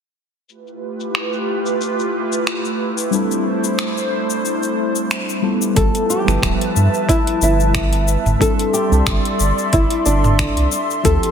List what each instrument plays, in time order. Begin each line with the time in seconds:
0.48 analog synth pad A3 E4 F4 G4 B4, cabasa
0.67 cabasa
1.00 cabasa
1.15 finger snap, cabasa
1.33 cabasa
1.66 cabasa
1.81 cabasa
1.99 cabasa
2.32 cabasa
2.47 finger snap, cabasa
2.65 cabasa
2.98 cabasa
3.11 fm electric piano G3 C4 D4 E4, analog synth pad D4 C5, cabasa
3.15 fm electric piano A4
3.31 cabasa
3.64 cabasa
3.79 finger snap, cabasa
3.97 cabasa
4.30 cabasa
4.45 cabasa
4.63 cabasa
4.96 cabasa
5.11 finger snap, cabasa
5.29 cabasa
5.42 fm electric piano G3 B3 E4 F4 A4
5.62 cabasa
5.75 sub bass G1, analog synth pad F3 B4 E5 A5, fm electric piano G3 B3 E4 F4 A4, nylon-string guitar A4, kick, closed hi-hat, cabasa
5.95 closed hi-hat, cabasa
6.10 nylon-string guitar G4, cabasa
6.25 sub bass G1, fm electric piano F3 G3 B3 E4, finger snap, cabasa
6.29 fm electric piano A4
6.43 sub bass D1, finger snap, kick, closed hi-hat, cabasa
6.61 closed hi-hat
6.76 sub bass G2, cabasa
6.94 cabasa
7.09 nylon-string guitar E4, kick, closed hi-hat, cabasa
7.27 closed hi-hat
7.41 sub bass G1, nylon-string guitar E4, cabasa
7.60 cabasa
7.75 finger snap, kick, closed hi-hat, cabasa
7.93 closed hi-hat
8.08 cabasa
8.25 sub bass G1, mid tom, cabasa
8.39 fm electric piano G3 C4 D4 E4 A4, analog synth pad A4 D5 C6, nylon-string guitar A4, kick, closed hi-hat, cabasa
8.59 closed hi-hat, cabasa
8.73 nylon-string guitar G4, cabasa
8.89 sub bass C2, fm electric piano G3 C4 D4 E4, cabasa
8.93 fm electric piano A4
9.07 sub bass G1, finger snap, kick, closed hi-hat, cabasa
9.25 closed hi-hat
9.40 sub bass G1, cabasa
9.58 cabasa
9.73 sub bass G1, nylon-string guitar E4, kick, closed hi-hat, cabasa
9.90 closed hi-hat
10.06 sub bass G1, nylon-string guitar D4, cabasa
10.24 mid tom, cabasa
10.39 finger snap, kick, closed hi-hat, cabasa
10.57 sub bass C2, closed hi-hat
10.71 analog synth pad G4, cabasa
10.91 cabasa
11.03 sub bass D2, fm electric piano F3 C4 D4 E4 G4, nylon-string guitar A4, kick, closed hi-hat, cabasa
11.23 closed hi-hat, cabasa